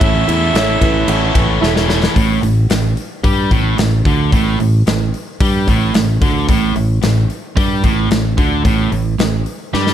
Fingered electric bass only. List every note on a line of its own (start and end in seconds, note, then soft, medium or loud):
0.01 0.23 A1 loud
0.28 0.50 E2 medium
0.54 0.77 A1 medium
0.81 1.04 A1 loud
1.08 1.30 A1 loud
1.35 1.57 A1 medium
1.62 2.06 E1 medium
2.16 2.41 A1 loud
2.43 2.68 A1 medium
2.70 2.95 A1 medium
3.23 3.49 G2 medium
3.51 3.76 A1 medium
3.78 4.04 A1 medium
4.05 4.30 D2 medium
4.32 4.57 A1 loud
4.60 4.85 A1 medium
4.87 5.12 A1 medium
5.40 5.66 G2 medium
5.67 5.93 A1 medium
5.95 6.20 A1 medium
6.21 6.47 D2 loud
6.48 6.74 A1 medium
6.76 7.01 A1 medium
7.03 7.28 A1 medium
7.57 7.82 G2 medium
7.84 8.09 A1 medium
8.11 8.36 A1 medium
8.38 8.63 D2 loud
8.65 8.90 A1 medium
8.92 9.17 A1 medium
9.19 9.45 A1 medium
9.74 9.94 G2 medium